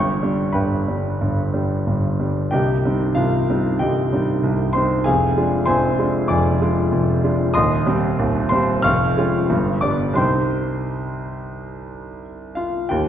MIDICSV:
0, 0, Header, 1, 2, 480
1, 0, Start_track
1, 0, Key_signature, -3, "minor"
1, 0, Tempo, 655022
1, 1855, Time_signature, 4, 2, 24, 8
1, 2327, Tempo, 626959
1, 6167, Tempo, 654308
1, 7127, Tempo, 690449
1, 8567, Tempo, 668151
1, 9654, End_track
2, 0, Start_track
2, 0, Title_t, "Grand piano"
2, 0, Program_c, 0, 0
2, 0, Note_on_c, 0, 31, 47
2, 0, Note_on_c, 0, 43, 53
2, 0, Note_on_c, 0, 73, 57
2, 0, Note_on_c, 0, 79, 54
2, 0, Note_on_c, 0, 85, 72
2, 49, Control_c, 0, 64, 127
2, 158, Note_off_c, 0, 31, 0
2, 159, Note_off_c, 0, 43, 0
2, 168, Note_on_c, 0, 55, 38
2, 169, Note_on_c, 0, 62, 42
2, 372, Note_off_c, 0, 73, 0
2, 373, Note_off_c, 0, 79, 0
2, 384, Note_off_c, 0, 55, 0
2, 385, Note_off_c, 0, 62, 0
2, 385, Note_on_c, 0, 83, 52
2, 395, Note_on_c, 0, 71, 41
2, 397, Note_on_c, 0, 79, 39
2, 398, Note_off_c, 0, 85, 0
2, 401, Note_on_c, 0, 43, 43
2, 402, Note_on_c, 0, 31, 48
2, 638, Note_off_c, 0, 31, 0
2, 638, Note_off_c, 0, 43, 0
2, 647, Note_on_c, 0, 55, 33
2, 649, Note_on_c, 0, 62, 36
2, 864, Note_off_c, 0, 55, 0
2, 865, Note_off_c, 0, 62, 0
2, 889, Note_on_c, 0, 43, 40
2, 894, Note_on_c, 0, 31, 42
2, 1121, Note_off_c, 0, 43, 0
2, 1124, Note_off_c, 0, 31, 0
2, 1127, Note_on_c, 0, 55, 32
2, 1128, Note_on_c, 0, 62, 35
2, 1333, Note_off_c, 0, 71, 0
2, 1334, Note_off_c, 0, 79, 0
2, 1344, Note_off_c, 0, 55, 0
2, 1344, Note_off_c, 0, 62, 0
2, 1357, Note_off_c, 0, 83, 0
2, 1369, Note_on_c, 0, 31, 39
2, 1371, Note_on_c, 0, 43, 40
2, 1605, Note_off_c, 0, 31, 0
2, 1606, Note_off_c, 0, 43, 0
2, 1610, Note_on_c, 0, 55, 30
2, 1613, Note_on_c, 0, 62, 36
2, 1830, Note_off_c, 0, 55, 0
2, 1831, Note_off_c, 0, 62, 0
2, 1838, Note_on_c, 0, 79, 59
2, 1846, Note_on_c, 0, 75, 45
2, 1849, Note_on_c, 0, 67, 49
2, 1853, Note_on_c, 0, 36, 48
2, 1854, Note_on_c, 0, 24, 44
2, 1867, Control_c, 0, 64, 0
2, 1993, Control_c, 0, 64, 127
2, 2085, Note_off_c, 0, 36, 0
2, 2086, Note_off_c, 0, 24, 0
2, 2091, Note_on_c, 0, 55, 34
2, 2097, Note_on_c, 0, 60, 38
2, 2098, Note_on_c, 0, 63, 39
2, 2293, Note_off_c, 0, 75, 0
2, 2295, Note_off_c, 0, 67, 0
2, 2303, Note_off_c, 0, 55, 0
2, 2306, Note_off_c, 0, 60, 0
2, 2306, Note_off_c, 0, 63, 0
2, 2306, Note_on_c, 0, 77, 59
2, 2315, Note_on_c, 0, 65, 43
2, 2319, Note_off_c, 0, 79, 0
2, 2323, Note_on_c, 0, 36, 45
2, 2325, Note_on_c, 0, 24, 46
2, 2560, Note_off_c, 0, 24, 0
2, 2560, Note_off_c, 0, 36, 0
2, 2576, Note_on_c, 0, 55, 37
2, 2578, Note_on_c, 0, 60, 36
2, 2581, Note_on_c, 0, 63, 37
2, 2775, Note_off_c, 0, 65, 0
2, 2791, Note_off_c, 0, 55, 0
2, 2792, Note_off_c, 0, 60, 0
2, 2794, Note_off_c, 0, 63, 0
2, 2800, Note_on_c, 0, 79, 64
2, 2801, Note_off_c, 0, 77, 0
2, 2808, Note_on_c, 0, 75, 46
2, 2809, Note_on_c, 0, 67, 45
2, 2817, Note_on_c, 0, 24, 48
2, 2818, Note_on_c, 0, 36, 42
2, 3049, Note_off_c, 0, 24, 0
2, 3050, Note_off_c, 0, 36, 0
2, 3057, Note_on_c, 0, 55, 35
2, 3059, Note_on_c, 0, 60, 36
2, 3066, Note_on_c, 0, 63, 41
2, 3272, Note_off_c, 0, 55, 0
2, 3272, Note_off_c, 0, 60, 0
2, 3276, Note_off_c, 0, 63, 0
2, 3291, Note_on_c, 0, 36, 45
2, 3293, Note_on_c, 0, 24, 42
2, 3500, Note_off_c, 0, 67, 0
2, 3500, Note_off_c, 0, 75, 0
2, 3516, Note_on_c, 0, 84, 61
2, 3524, Note_off_c, 0, 36, 0
2, 3525, Note_off_c, 0, 24, 0
2, 3525, Note_on_c, 0, 72, 44
2, 3526, Note_off_c, 0, 79, 0
2, 3537, Note_on_c, 0, 55, 35
2, 3538, Note_on_c, 0, 60, 36
2, 3543, Note_on_c, 0, 63, 39
2, 3749, Note_off_c, 0, 55, 0
2, 3750, Note_off_c, 0, 60, 0
2, 3750, Note_off_c, 0, 72, 0
2, 3752, Note_off_c, 0, 63, 0
2, 3757, Note_on_c, 0, 80, 63
2, 3763, Note_off_c, 0, 84, 0
2, 3767, Note_on_c, 0, 68, 50
2, 3767, Note_on_c, 0, 77, 50
2, 3774, Note_on_c, 0, 29, 50
2, 3775, Note_on_c, 0, 41, 51
2, 3784, Control_c, 0, 64, 0
2, 3903, Control_c, 0, 64, 127
2, 4001, Note_off_c, 0, 29, 0
2, 4002, Note_off_c, 0, 41, 0
2, 4009, Note_on_c, 0, 56, 40
2, 4012, Note_on_c, 0, 65, 44
2, 4013, Note_on_c, 0, 62, 37
2, 4210, Note_off_c, 0, 68, 0
2, 4210, Note_off_c, 0, 77, 0
2, 4221, Note_off_c, 0, 56, 0
2, 4222, Note_off_c, 0, 65, 0
2, 4223, Note_off_c, 0, 62, 0
2, 4223, Note_off_c, 0, 80, 0
2, 4226, Note_on_c, 0, 84, 71
2, 4234, Note_on_c, 0, 72, 58
2, 4234, Note_on_c, 0, 80, 58
2, 4242, Note_on_c, 0, 29, 48
2, 4243, Note_on_c, 0, 41, 50
2, 4474, Note_off_c, 0, 29, 0
2, 4475, Note_off_c, 0, 41, 0
2, 4480, Note_on_c, 0, 56, 43
2, 4482, Note_on_c, 0, 62, 39
2, 4486, Note_on_c, 0, 65, 43
2, 4687, Note_off_c, 0, 72, 0
2, 4688, Note_off_c, 0, 80, 0
2, 4697, Note_off_c, 0, 56, 0
2, 4698, Note_off_c, 0, 62, 0
2, 4701, Note_off_c, 0, 65, 0
2, 4704, Note_on_c, 0, 86, 60
2, 4710, Note_on_c, 0, 74, 51
2, 4713, Note_on_c, 0, 80, 48
2, 4714, Note_off_c, 0, 84, 0
2, 4720, Note_on_c, 0, 29, 54
2, 4720, Note_on_c, 0, 41, 48
2, 4953, Note_off_c, 0, 29, 0
2, 4953, Note_off_c, 0, 41, 0
2, 4958, Note_on_c, 0, 56, 43
2, 4963, Note_on_c, 0, 62, 41
2, 4967, Note_on_c, 0, 65, 46
2, 5175, Note_off_c, 0, 56, 0
2, 5177, Note_off_c, 0, 62, 0
2, 5180, Note_off_c, 0, 65, 0
2, 5193, Note_on_c, 0, 29, 52
2, 5194, Note_on_c, 0, 41, 49
2, 5430, Note_off_c, 0, 29, 0
2, 5430, Note_off_c, 0, 41, 0
2, 5438, Note_on_c, 0, 56, 40
2, 5441, Note_on_c, 0, 62, 42
2, 5444, Note_on_c, 0, 65, 45
2, 5646, Note_off_c, 0, 74, 0
2, 5647, Note_off_c, 0, 80, 0
2, 5657, Note_off_c, 0, 56, 0
2, 5658, Note_off_c, 0, 62, 0
2, 5660, Note_off_c, 0, 65, 0
2, 5666, Note_on_c, 0, 87, 81
2, 5673, Note_off_c, 0, 86, 0
2, 5673, Note_on_c, 0, 75, 63
2, 5673, Note_on_c, 0, 84, 58
2, 5681, Note_on_c, 0, 27, 52
2, 5681, Note_on_c, 0, 39, 60
2, 5695, Control_c, 0, 64, 0
2, 5797, Control_c, 0, 64, 127
2, 5916, Note_off_c, 0, 27, 0
2, 5916, Note_off_c, 0, 39, 0
2, 5917, Note_on_c, 0, 55, 46
2, 5919, Note_on_c, 0, 60, 47
2, 5922, Note_on_c, 0, 67, 55
2, 6140, Note_off_c, 0, 55, 0
2, 6141, Note_off_c, 0, 60, 0
2, 6142, Note_off_c, 0, 67, 0
2, 6164, Note_on_c, 0, 27, 56
2, 6166, Note_on_c, 0, 39, 57
2, 6375, Note_off_c, 0, 75, 0
2, 6375, Note_off_c, 0, 84, 0
2, 6387, Note_on_c, 0, 84, 70
2, 6398, Note_on_c, 0, 72, 52
2, 6400, Note_off_c, 0, 27, 0
2, 6401, Note_off_c, 0, 39, 0
2, 6401, Note_off_c, 0, 87, 0
2, 6406, Note_on_c, 0, 60, 44
2, 6407, Note_on_c, 0, 55, 43
2, 6409, Note_on_c, 0, 67, 49
2, 6626, Note_off_c, 0, 55, 0
2, 6626, Note_off_c, 0, 60, 0
2, 6627, Note_off_c, 0, 67, 0
2, 6629, Note_off_c, 0, 72, 0
2, 6632, Note_on_c, 0, 89, 83
2, 6641, Note_off_c, 0, 84, 0
2, 6642, Note_on_c, 0, 77, 66
2, 6642, Note_on_c, 0, 85, 59
2, 6650, Note_on_c, 0, 29, 57
2, 6652, Note_on_c, 0, 41, 61
2, 6666, Control_c, 0, 64, 0
2, 6771, Control_c, 0, 64, 127
2, 6881, Note_off_c, 0, 29, 0
2, 6882, Note_off_c, 0, 41, 0
2, 6887, Note_on_c, 0, 56, 44
2, 6890, Note_on_c, 0, 61, 41
2, 6894, Note_on_c, 0, 65, 52
2, 7103, Note_off_c, 0, 56, 0
2, 7105, Note_off_c, 0, 61, 0
2, 7107, Note_off_c, 0, 65, 0
2, 7126, Note_on_c, 0, 31, 52
2, 7126, Note_on_c, 0, 43, 61
2, 7142, Control_c, 0, 64, 0
2, 7272, Control_c, 0, 64, 127
2, 7329, Note_off_c, 0, 77, 0
2, 7329, Note_off_c, 0, 85, 0
2, 7343, Note_on_c, 0, 86, 65
2, 7351, Note_on_c, 0, 74, 49
2, 7352, Note_off_c, 0, 89, 0
2, 7353, Note_off_c, 0, 31, 0
2, 7353, Note_off_c, 0, 43, 0
2, 7359, Note_on_c, 0, 55, 39
2, 7362, Note_on_c, 0, 59, 37
2, 7367, Note_on_c, 0, 62, 42
2, 7563, Note_off_c, 0, 55, 0
2, 7566, Note_on_c, 0, 36, 51
2, 7574, Note_on_c, 0, 55, 37
2, 7578, Note_off_c, 0, 59, 0
2, 7579, Note_off_c, 0, 74, 0
2, 7581, Note_off_c, 0, 62, 0
2, 7583, Note_on_c, 0, 60, 37
2, 7583, Note_on_c, 0, 84, 61
2, 7592, Note_off_c, 0, 86, 0
2, 7592, Note_on_c, 0, 79, 45
2, 7593, Note_on_c, 0, 63, 40
2, 7595, Note_on_c, 0, 72, 49
2, 7615, Control_c, 0, 64, 0
2, 7735, Control_c, 0, 64, 127
2, 9019, Note_off_c, 0, 79, 0
2, 9021, Note_off_c, 0, 72, 0
2, 9043, Note_off_c, 0, 84, 0
2, 9272, Note_on_c, 0, 77, 51
2, 9283, Note_on_c, 0, 65, 37
2, 9485, Note_off_c, 0, 36, 0
2, 9489, Note_off_c, 0, 55, 0
2, 9494, Note_off_c, 0, 60, 0
2, 9499, Note_off_c, 0, 63, 0
2, 9509, Note_off_c, 0, 65, 0
2, 9515, Note_on_c, 0, 79, 63
2, 9521, Note_off_c, 0, 77, 0
2, 9524, Note_on_c, 0, 67, 49
2, 9530, Note_on_c, 0, 39, 59
2, 9543, Control_c, 0, 64, 0
2, 9654, Note_off_c, 0, 39, 0
2, 9654, Note_off_c, 0, 67, 0
2, 9654, Note_off_c, 0, 79, 0
2, 9654, End_track
0, 0, End_of_file